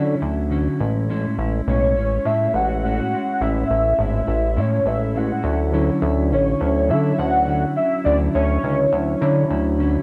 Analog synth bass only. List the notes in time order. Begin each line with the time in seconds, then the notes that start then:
Already playing: D3
0.22 D2
0.80 A1
1.38 A1
1.67 B1
1.95 A1
2.25 A2
2.54 A1
3.41 A1
3.70 A1
3.99 G#1
4.28 A1
4.56 A2
4.86 A1
5.44 D2
6.02 D2
6.32 A1
6.61 D2
6.90 D3
7.19 D2
8.06 D2
8.35 D2
8.64 C#2
8.93 D2
9.22 D3
9.51 D2